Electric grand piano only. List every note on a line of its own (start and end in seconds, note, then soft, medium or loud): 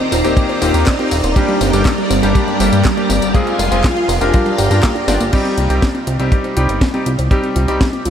0.24 0.59 A#3 loud
0.24 0.59 C4 medium
0.24 0.59 D#4 medium
0.24 0.59 G4 loud
0.61 0.84 A#3 medium
0.61 0.84 C4 medium
0.61 0.84 D#4 medium
0.61 0.84 G4 loud
0.99 1.13 A#3 medium
0.99 1.13 C4 medium
0.99 1.13 D#4 medium
0.99 1.13 G4 medium
1.36 1.70 G3 loud
1.36 1.70 A#3 medium
1.36 1.70 D4 medium
1.36 1.70 G4 loud
1.73 1.87 G3 medium
1.73 1.87 A#3 medium
1.73 1.87 D4 medium
1.73 1.87 G4 loud
2.23 2.57 G3 loud
2.23 2.57 A#3 medium
2.23 2.57 D4 medium
2.23 2.57 G4 loud
2.60 2.82 G3 loud
2.60 2.82 A#3 medium
2.60 2.82 D4 medium
2.60 2.82 G4 loud
2.97 3.11 G3 medium
2.97 3.11 A#3 medium
2.97 3.11 D4 medium
2.97 3.11 G4 medium
3.34 3.69 G#3 medium
3.34 3.69 C4 medium
3.34 3.69 F4 medium
3.34 3.69 G#4 loud
3.72 3.85 G#3 medium
3.72 3.85 C4 medium
3.72 3.85 F4 medium
3.72 3.85 G#4 loud
4.21 4.55 D4 loud
4.21 4.55 F4 medium
4.21 4.55 G4 medium
4.21 4.55 A#4 loud
4.71 4.85 D4 medium
4.71 4.85 F4 medium
4.71 4.85 G4 medium
4.71 4.85 A#4 medium
5.08 5.22 D4 loud
5.08 5.22 F4 medium
5.08 5.22 G4 medium
5.08 5.22 D5 loud
5.33 5.67 G3 medium
5.33 5.67 C4 medium
5.33 5.67 D#4 medium
5.33 5.67 G4 loud
5.70 5.84 G3 medium
5.70 5.84 C4 medium
5.70 5.84 D#4 medium
5.70 5.84 G4 loud
6.20 6.54 G3 medium
6.20 6.54 C4 medium
6.20 6.54 D#4 medium
6.20 6.54 G4 loud
6.57 6.79 G3 medium
6.57 6.79 C4 medium
6.57 6.79 D#4 medium
6.57 6.79 G4 loud
6.94 7.08 G3 medium
6.94 7.08 C4 medium
6.94 7.08 D#4 medium
6.94 7.08 G4 medium
7.31 7.65 G3 medium
7.31 7.65 C4 medium
7.31 7.65 D#4 medium
7.31 7.65 G4 loud
7.68 7.82 G3 medium
7.68 7.82 C4 medium
7.68 7.82 D#4 medium
7.68 7.82 G4 loud